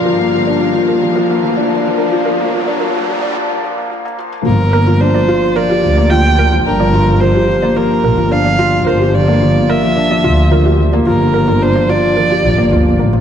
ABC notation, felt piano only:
X:1
M:4/4
L:1/16
Q:1/4=109
K:Cmix
V:1 name="Felt piano" clef=bass
F, B, F, D z F, B, F, F, B, F, D z F, B, F, | F, B, F, D F, B, F, D F, B, F, B, F, B, F, B, | F, z B, F, D F, F z F, G F, B, F, z B, F, | D F, F z F, G F, B, F, z B, F, D F, F z |
F, G F, B, F, z B, F, D F, F z F, G F, B, | F, z B, F, D F, F z F, G F, B, F, z B, F, |]